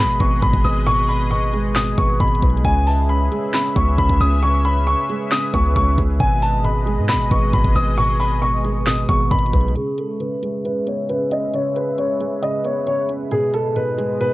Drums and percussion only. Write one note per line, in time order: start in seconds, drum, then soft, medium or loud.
0.20 kick loud
0.20 closed hi-hat medium
0.42 kick loud
0.42 closed hi-hat medium
0.54 kick medium
0.64 closed hi-hat medium
0.87 closed hi-hat medium
1.09 open hi-hat medium
1.31 closed hi-hat medium
1.54 closed hi-hat medium
1.76 snare loud
1.76 clap medium
1.76 closed hi-hat medium
1.98 kick loud
1.98 closed hi-hat medium
2.20 kick loud
2.20 closed hi-hat soft
2.28 closed hi-hat medium
2.35 closed hi-hat medium
2.42 kick loud
2.42 closed hi-hat medium
2.50 closed hi-hat medium
2.57 closed hi-hat medium
2.65 kick loud
2.65 closed hi-hat medium
2.87 open hi-hat medium
3.09 closed hi-hat medium
3.32 closed hi-hat medium
3.54 snare loud
3.54 clap loud
3.54 closed hi-hat medium
3.76 kick loud
3.76 closed hi-hat medium
3.98 kick loud
3.98 closed hi-hat medium
4.09 kick medium
4.20 closed hi-hat medium
4.42 closed hi-hat medium
4.65 closed hi-hat medium
4.87 closed hi-hat medium
5.09 closed hi-hat medium
5.31 snare loud
5.31 clap medium
5.31 closed hi-hat medium
5.53 kick loud
5.53 closed hi-hat medium
5.76 kick medium
5.76 closed hi-hat medium
5.98 kick loud
5.98 closed hi-hat medium
6.20 kick loud
6.20 closed hi-hat medium
6.43 open hi-hat medium
6.65 closed hi-hat medium
6.87 closed hi-hat medium
7.09 snare loud
7.09 clap loud
7.09 closed hi-hat medium
7.31 kick loud
7.31 closed hi-hat medium
7.53 kick medium
7.53 closed hi-hat medium
7.65 kick loud
7.76 closed hi-hat medium
7.98 closed hi-hat medium
8.20 open hi-hat medium
8.42 closed hi-hat medium
8.65 closed hi-hat medium
8.87 snare loud
8.87 clap medium
8.87 closed hi-hat medium
9.09 kick loud
9.09 closed hi-hat medium
9.31 kick loud
9.31 closed hi-hat soft
9.39 closed hi-hat medium
9.46 closed hi-hat medium
9.53 kick loud
9.53 closed hi-hat medium
9.61 closed hi-hat medium
9.68 closed hi-hat medium
9.76 closed hi-hat medium
9.98 closed hi-hat medium
10.20 closed hi-hat medium
10.43 closed hi-hat medium
10.65 closed hi-hat medium
10.87 closed hi-hat medium
11.09 closed hi-hat medium
11.31 closed hi-hat medium
11.54 closed hi-hat medium
11.76 closed hi-hat medium
11.98 closed hi-hat medium
12.21 closed hi-hat medium
12.43 closed hi-hat medium
12.64 closed hi-hat medium
12.87 closed hi-hat medium
13.09 closed hi-hat medium
13.31 closed hi-hat medium
13.54 closed hi-hat medium
13.76 closed hi-hat medium
13.98 closed hi-hat medium
14.20 closed hi-hat medium